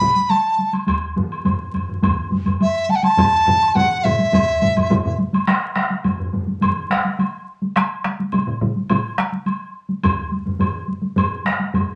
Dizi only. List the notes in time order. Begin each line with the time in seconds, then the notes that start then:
Already playing: B5
0.30 A5
2.62 E5
2.90 A5
2.96 F#5
3.03 A5
3.75 F#5
4.04 E5